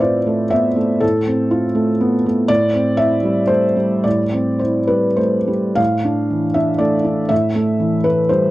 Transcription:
0.00 0.98 A2 medium
0.00 0.17 C4 soft
0.00 0.42 F4 soft
0.00 1.05 B4 soft
0.00 1.04 C5 soft
0.00 0.52 D5 medium
0.00 0.50 E5 medium
0.27 0.67 A3 soft
0.50 0.77 B3 soft
0.50 1.01 E5 medium
0.76 1.16 A3 soft
1.00 2.44 A2 medium
1.00 2.24 A4 medium
1.27 1.66 C4 soft
1.51 1.90 F4 soft
1.75 2.14 A3 soft
2.00 2.25 B3 soft
2.26 2.50 A3 soft
2.48 4.01 A2 medium
2.48 2.98 D5 loud
2.74 3.14 C4 soft
2.97 3.39 E4 soft
2.97 3.49 E5 medium
3.23 3.66 G3 soft
3.47 3.76 A3 soft
3.47 4.03 C5 medium
3.76 4.22 G3 soft
4.04 5.75 A2 medium
4.04 4.61 D5 medium
4.33 4.78 C4 soft
4.59 5.06 E4 soft
4.59 5.15 C5 soft
4.87 5.35 G3 soft
4.87 5.17 B4 medium
5.17 5.48 A3 soft
5.17 5.78 C5 medium
5.47 5.78 G3 soft
5.75 7.26 A2 medium
5.75 6.55 F5 medium
6.05 6.46 D4 soft
6.30 6.71 E3 soft
6.54 6.96 D4 soft
6.54 6.80 E5 medium
6.78 7.20 A3 soft
6.78 7.29 D5 medium
7.04 7.30 D4 soft
7.29 8.51 A2 medium
7.29 8.04 E5 medium
7.55 7.95 A3 soft
7.80 8.20 E3 soft
8.04 8.46 A3 soft
8.04 8.30 B4 medium
8.29 8.51 G3 soft
8.29 8.51 C5 medium

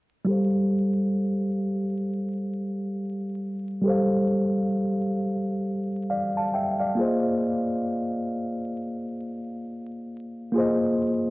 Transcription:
0.25 3.80 G3 medium
0.25 3.81 G4 medium
0.25 3.82 A4 medium
0.30 3.83 C5 medium
0.30 3.84 F5 medium
3.82 6.93 G3 medium
3.82 6.94 G4 medium
3.82 6.95 A4 medium
3.88 6.96 C5 medium
3.88 6.07 F5 medium
6.10 6.33 D5 soft
6.10 6.33 F5 medium
6.37 6.55 F5 soft
6.37 6.55 A5 medium
6.54 6.78 E5 medium
6.54 6.77 G5 medium
6.80 7.22 D5 soft
6.80 7.22 F5 medium
6.95 10.51 A#3 medium
6.95 10.52 F4 soft
6.99 10.53 G#4 soft
6.99 10.54 C5 medium
6.99 10.55 D#5 medium
10.52 11.30 A#3 medium
10.52 11.30 F4 medium
10.52 11.30 G#4 medium
10.58 11.30 C5 medium
10.58 11.30 D#5 medium

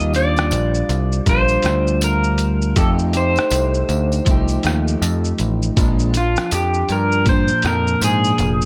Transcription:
0.00 0.53 D#2 loud
0.00 0.14 D#3 medium
0.00 0.15 G3 medium
0.00 0.14 A#3 medium
0.00 0.12 F4 medium
0.00 0.15 D#5 loud
0.00 shaker medium
0.13 1.26 G3 soft
0.13 1.27 D4 soft
0.13 1.29 F4 medium
0.13 1.29 D5 loud
0.13 closed hi-hat medium
0.13 tambourine medium
0.13 shaker medium
0.36 cross-stick loud
0.36 tambourine soft
0.36 shaker soft
0.51 0.82 A#1 medium
0.51 closed hi-hat medium
0.51 tambourine medium
0.51 shaker medium
0.74 shaker soft
0.89 1.19 C2 medium
0.89 closed hi-hat soft
0.89 tambourine medium
0.89 shaker soft
1.12 shaker soft
1.26 1.57 A#1 medium
1.26 2.76 G3 medium
1.26 2.77 D4 medium
1.26 2.77 F4 medium
1.26 2.04 C5 loud
1.26 kick medium
1.26 closed hi-hat medium
1.26 tambourine soft
1.26 shaker medium
1.48 tambourine soft
1.48 shaker medium
1.63 2.73 D2 medium
1.63 cross-stick medium
1.63 closed hi-hat medium
1.63 tambourine soft
1.63 shaker medium
1.87 shaker medium
2.01 2.79 A#4 medium
2.01 closed hi-hat medium
2.01 tambourine medium
2.01 shaker medium
2.24 shaker medium
2.38 closed hi-hat medium
2.38 tambourine medium
2.38 shaker medium
2.62 shaker medium
2.76 3.37 F2 loud
2.76 3.14 F3 medium
2.76 3.15 A3 medium
2.76 3.14 D#4 medium
2.76 3.13 G4 medium
2.76 2.89 A4 medium
2.76 kick loud
2.76 closed hi-hat medium
2.76 tambourine soft
2.76 shaker medium
2.99 shaker medium
3.13 4.26 A3 soft
3.13 4.28 D#4 medium
3.13 4.27 G4 medium
3.13 4.62 C5 medium
3.13 closed hi-hat medium
3.13 tambourine soft
3.13 shaker medium
3.36 cross-stick loud
3.36 tambourine soft
3.36 shaker soft
3.50 3.82 C2 loud
3.50 closed hi-hat medium
3.50 tambourine medium
3.50 shaker medium
3.74 shaker soft
3.89 4.19 D2 medium
3.89 closed hi-hat soft
3.89 tambourine medium
3.89 shaker soft
4.12 tambourine soft
4.12 shaker soft
4.25 4.57 C2 medium
4.25 5.77 F3 medium
4.25 5.77 A3 medium
4.25 kick medium
4.25 closed hi-hat medium
4.25 tambourine soft
4.25 shaker medium
4.29 5.78 D#4 medium
4.29 5.79 G4 medium
4.48 tambourine soft
4.48 shaker medium
4.63 4.94 D#2 medium
4.63 cross-stick medium
4.63 closed hi-hat medium
4.63 tambourine soft
4.63 shaker medium
4.88 shaker medium
5.02 5.32 F2 medium
5.02 closed hi-hat medium
5.02 tambourine medium
5.02 shaker medium
5.25 shaker medium
5.38 5.70 A1 medium
5.38 closed hi-hat medium
5.38 tambourine medium
5.38 shaker medium
5.62 shaker medium
5.77 6.37 A#1 loud
5.77 6.14 A#2 medium
5.77 6.15 F3 medium
5.77 6.15 G#3 medium
5.77 6.13 D4 medium
5.77 kick loud
5.77 closed hi-hat medium
5.77 tambourine soft
5.77 shaker medium
5.99 shaker medium
6.14 7.27 F3 soft
6.14 7.27 D4 medium
6.14 6.51 F4 medium
6.14 closed hi-hat medium
6.14 tambourine medium
6.14 shaker medium
6.36 cross-stick loud
6.36 tambourine soft
6.36 shaker soft
6.51 6.82 F2 loud
6.51 6.92 G4 medium
6.51 closed hi-hat medium
6.51 tambourine medium
6.51 shaker medium
6.74 shaker soft
6.89 7.50 G2 medium
6.89 7.26 A#4 loud
6.89 closed hi-hat soft
6.89 tambourine medium
6.89 shaker soft
7.12 shaker soft
7.25 8.65 A#2 medium
7.25 8.65 F3 medium
7.25 7.66 C5 loud
7.25 kick medium
7.25 closed hi-hat medium
7.25 tambourine soft
7.25 shaker medium
7.31 8.65 D4 medium
7.48 shaker medium
7.62 7.95 F2 medium
7.62 cross-stick medium
7.62 closed hi-hat medium
7.62 tambourine soft
7.62 shaker medium
7.67 8.04 A#4 loud
7.87 shaker medium
8.01 8.32 G#2 medium
8.01 8.65 G#4 loud
8.01 closed hi-hat medium
8.01 tambourine medium
8.01 shaker medium
8.24 tambourine soft
8.24 shaker medium
8.38 8.65 F1 medium
8.38 closed hi-hat medium
8.38 tambourine soft
8.38 shaker soft
8.61 shaker medium

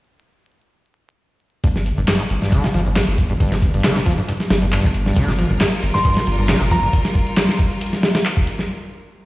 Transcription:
1.64 1.92 G1 loud
1.64 1.68 G2 medium
1.64 kick loud
1.64 closed hi-hat medium
1.64 shaker soft
1.76 snare soft
1.86 closed hi-hat medium
1.86 shaker medium
1.97 2.05 G1 loud
1.97 2.01 G2 loud
1.97 shaker soft
2.08 2.21 G2 loud
2.08 snare loud
2.08 clap loud
2.08 open hi-hat medium
2.08 shaker soft
2.20 2.23 A2 loud
2.20 closed hi-hat soft
2.30 2.38 G1 medium
2.30 closed hi-hat medium
2.30 shaker medium
2.42 2.54 G2 medium
2.42 snare soft
2.42 shaker soft
2.52 2.66 D3 medium
2.52 kick loud
2.52 closed hi-hat medium
2.52 shaker soft
2.64 2.67 G2 medium
2.64 snare medium
2.74 3.03 G1 medium
2.74 2.81 F3 medium
2.74 closed hi-hat medium
2.74 shaker medium
2.86 2.89 G2 medium
2.86 shaker soft
2.96 3.00 G2 medium
2.96 snare loud
2.96 clap loud
2.96 closed hi-hat medium
2.96 shaker soft
3.08 3.36 G1 medium
3.18 kick medium
3.18 closed hi-hat medium
3.18 shaker medium
3.30 3.33 G2 loud
3.30 shaker soft
3.40 3.69 G1 loud
3.40 3.54 G2 loud
3.40 kick loud
3.40 closed hi-hat medium
3.40 shaker soft
3.52 3.56 A2 loud
3.52 snare medium
3.62 kick loud
3.62 closed hi-hat medium
3.62 shaker medium
3.74 3.81 G1 loud
3.74 3.86 G2 medium
3.74 closed hi-hat soft
3.74 shaker soft
3.84 3.97 D3 medium
3.84 snare loud
3.84 clap loud
3.84 closed hi-hat medium
3.84 shaker soft
3.96 3.99 G2 medium
3.96 snare medium
4.06 4.15 G1 medium
4.06 4.13 F3 medium
4.06 kick loud
4.06 closed hi-hat medium
4.06 shaker medium
4.18 4.21 G2 medium
4.18 shaker soft
4.28 4.32 G2 medium
4.28 closed hi-hat medium
4.28 shaker soft
4.40 snare soft
4.50 4.79 G1 medium
4.50 snare loud
4.50 closed hi-hat medium
4.50 shaker medium
4.62 4.66 G2 loud
4.62 shaker soft
4.72 4.86 G2 loud
4.72 clap loud
4.72 closed hi-hat medium
4.72 shaker soft
4.84 5.12 G1 loud
4.84 4.88 A2 loud
4.84 kick loud
4.94 closed hi-hat medium
4.94 shaker medium
5.06 5.18 G2 medium
5.06 snare soft
5.06 shaker soft
5.16 5.45 G1 loud
5.16 5.30 D3 medium
5.16 8.66 G3 medium
5.16 8.66 F4 medium
5.16 8.66 A#4 medium
5.16 kick loud
5.16 closed hi-hat medium
5.16 shaker soft
5.28 5.32 G2 medium
5.28 snare soft
5.38 5.45 F3 medium
5.38 closed hi-hat medium
5.38 shaker medium
5.50 5.58 G1 loud
5.50 5.54 G2 medium
5.50 shaker soft
5.61 5.65 G2 medium
5.61 snare loud
5.61 clap loud
5.61 open hi-hat medium
5.61 shaker soft
5.72 closed hi-hat soft
5.82 5.91 G1 medium
5.82 closed hi-hat medium
5.82 shaker medium
5.94 5.98 G2 loud
5.94 6.13 C6 loud
5.94 snare soft
5.94 shaker soft
6.04 6.18 G2 loud
6.04 kick loud
6.04 closed hi-hat loud
6.04 shaker soft
6.17 6.20 A2 loud
6.17 snare medium
6.26 6.56 G1 medium
6.26 closed hi-hat medium
6.26 shaker medium
6.38 6.51 G2 medium
6.38 shaker soft
6.49 6.62 D3 medium
6.49 snare loud
6.49 clap loud
6.49 closed hi-hat medium
6.49 shaker soft
6.61 6.89 G1 medium
6.61 6.64 G2 medium
6.71 6.77 F3 medium
6.71 6.93 A#5 medium
6.71 kick loud
6.71 closed hi-hat medium
6.71 shaker medium
6.83 6.86 G2 medium
6.83 shaker soft
6.93 kick loud
6.93 closed hi-hat medium
6.93 shaker soft
7.05 snare medium
7.15 kick loud
7.15 closed hi-hat medium
7.15 shaker medium
7.27 closed hi-hat soft
7.27 shaker soft
7.37 snare loud
7.37 clap loud
7.37 closed hi-hat medium
7.37 shaker soft
7.49 snare medium
7.59 kick loud
7.59 closed hi-hat medium
7.59 shaker medium
7.71 shaker soft
7.81 closed hi-hat loud
7.81 shaker soft
7.93 snare soft
8.03 snare loud
8.03 open hi-hat medium
8.03 shaker medium
8.15 snare loud
8.15 open hi-hat medium
8.15 shaker soft
8.25 clap loud
8.25 closed hi-hat medium
8.25 shaker soft
8.37 kick loud
8.47 closed hi-hat medium
8.47 shaker medium
8.59 snare soft
8.59 shaker soft

